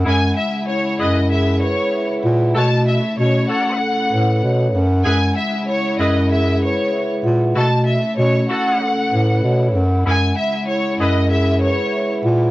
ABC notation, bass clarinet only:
X:1
M:4/4
L:1/16
Q:"Swing 16ths" 1/4=96
K:F#phr
V:1 name="Bass clarinet" clef=bass
F,,2 z4 F,,4- F,, z3 ^A,,2 | B,,3 z B,,2 z4 A,,2 B,,2 F,,2 | F,,2 z4 F,,4- F,, z3 ^A,,2 | B,,3 z B,,2 z4 A,,2 B,,2 F,,2 |
F,,2 z4 F,,4- F,, z3 ^A,,2 |]